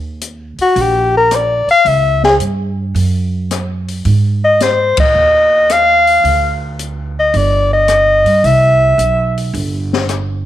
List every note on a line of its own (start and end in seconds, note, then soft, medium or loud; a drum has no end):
0.00 0.55 D#2 medium
0.21 closed hi-hat medium
0.58 0.83 F#4 medium
0.58 muted upright bass stroke soft
0.58 open hi-hat soft
0.76 1.65 A#1 medium
0.76 kick soft
0.76 open hi-hat soft
0.81 1.16 G4 medium
1.17 1.37 A#4 medium
1.31 cross-stick medium
1.31 closed hi-hat soft
1.35 1.70 D5 medium
1.67 1.89 F5 loud
1.67 muted upright bass stroke soft
1.67 open hi-hat soft
1.85 2.36 C#2 medium
1.85 2.24 E5 medium
1.85 kick soft
1.85 open hi-hat soft
2.23 2.35 G#4 medium
2.23 snare soft
2.40 2.91 G2 medium
2.40 closed hi-hat medium
2.95 4.01 F#2 medium
2.95 kick soft
2.95 open hi-hat soft
3.51 cross-stick medium
3.51 closed hi-hat medium
3.88 open hi-hat soft
4.05 4.94 G#2 medium
4.05 kick soft
4.05 open hi-hat soft
4.44 4.64 D#5 medium
4.60 4.99 C5 medium
4.60 snare soft
4.60 closed hi-hat soft
4.97 5.74 D#5 medium
4.97 muted upright bass stroke soft
4.97 kick medium
4.97 ride medium
5.14 6.20 D#2 medium
5.69 6.64 F5 medium
5.69 cross-stick medium
5.69 closed hi-hat soft
6.07 open hi-hat soft
6.24 7.30 D2 medium
6.24 kick soft
6.24 open hi-hat soft
6.79 closed hi-hat medium
7.20 7.39 D#5 medium
7.34 8.23 G1 medium
7.34 7.73 D5 medium
7.34 kick soft
7.34 open hi-hat soft
7.73 8.47 D#5 loud
7.88 cross-stick medium
7.88 closed hi-hat medium
8.25 8.42 G2 medium
8.25 open hi-hat soft
8.44 8.95 C2 medium
8.44 9.38 E5 medium
8.44 kick soft
8.44 open hi-hat soft
8.98 9.50 B1 medium
8.98 closed hi-hat soft
9.37 open hi-hat soft
9.54 10.43 G1 medium
9.54 kick soft
9.54 open hi-hat soft
9.93 snare soft
10.09 cross-stick medium
10.09 closed hi-hat soft